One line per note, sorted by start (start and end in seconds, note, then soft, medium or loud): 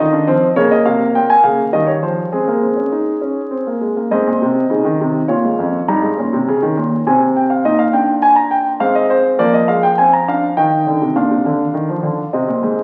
0.00 0.16 D#3 medium
0.00 0.13 D#4 medium
0.00 0.55 D#5 medium
0.13 0.27 D4 medium
0.27 0.46 F3 medium
0.27 0.46 C4 medium
0.56 0.74 C#3 medium
0.56 1.69 A#3 medium
0.56 0.71 C#5 loud
0.71 0.85 D#5 medium
0.86 1.04 C3 medium
0.86 1.04 F5 medium
1.15 1.33 A#2 medium
1.15 1.29 G5 medium
1.30 1.44 G#5 medium
1.44 1.62 C#3 medium
1.44 1.62 F5 medium
1.73 1.91 D#3 medium
1.73 2.31 G3 medium
1.73 1.87 D#5 medium
1.87 2.02 C#5 medium
2.02 2.21 F3 medium
2.02 2.21 C5 medium
2.32 3.78 G#3 medium
2.32 2.47 C4 medium
2.32 3.78 G#4 medium
2.48 2.62 A#3 medium
2.62 2.77 C4 medium
2.77 2.92 C#4 medium
2.92 3.11 D#4 medium
3.21 3.40 C#4 medium
3.51 3.66 C4 medium
3.67 3.82 A#3 soft
3.81 3.96 G#3 medium
3.97 4.11 A#3 soft
4.11 4.26 G#2 medium
4.11 4.69 C4 medium
4.11 5.25 D#5 medium
4.27 4.41 A#2 medium
4.42 4.60 C3 medium
4.70 4.85 C#3 medium
4.70 5.27 D#4 medium
4.85 4.99 D#3 medium
5.01 5.18 C3 medium
5.28 5.43 A#2 medium
5.28 5.86 F4 medium
5.28 5.86 C#5 medium
5.44 5.58 G#2 medium
5.59 5.77 F2 medium
5.88 6.02 G2 medium
5.88 6.06 D#4 medium
5.88 7.02 A#5 medium
6.02 6.17 G#2 medium
6.18 6.32 A#2 medium
6.18 7.03 C#4 medium
6.33 6.47 C3 medium
6.48 6.62 C#3 medium
6.62 6.76 D#3 medium
6.77 6.95 A#2 medium
7.07 7.63 C3 medium
7.07 7.63 C4 medium
7.07 7.24 G#5 medium
7.36 7.50 G5 medium
7.50 7.64 F5 medium
7.65 8.78 A#2 medium
7.65 7.83 D#4 medium
7.65 7.79 D#5 medium
7.79 7.93 F5 medium
7.93 8.78 D4 medium
7.93 8.11 G5 medium
8.22 8.36 G#5 medium
8.36 8.50 A#5 medium
8.51 8.69 G5 medium
8.80 9.37 G#2 medium
8.80 9.37 C4 medium
8.80 8.94 F5 medium
8.95 9.09 D#5 medium
9.10 9.28 C5 medium
9.39 10.52 F3 medium
9.39 9.57 A#3 medium
9.39 9.53 D5 medium
9.54 9.68 D#5 medium
9.68 9.86 G#3 medium
9.68 9.82 F5 medium
9.83 9.97 G5 medium
9.98 10.16 C4 medium
9.98 10.12 G#5 medium
10.13 10.27 A#5 medium
10.28 10.46 D4 medium
10.28 10.46 F5 medium
10.57 10.75 D#3 medium
10.57 11.13 D#4 medium
10.57 11.13 G5 medium
10.87 11.00 D3 medium
11.02 11.15 C3 medium
11.16 11.29 A#2 medium
11.16 12.29 D4 medium
11.16 12.29 F5 medium
11.31 11.44 C3 medium
11.46 11.63 D3 medium
11.74 11.88 D#3 medium
11.89 12.03 F3 medium
12.03 12.21 D3 medium
12.33 12.47 C3 medium
12.33 12.83 C4 medium
12.33 12.83 D#5 medium
12.49 12.62 A#2 medium
12.63 12.81 G#2 medium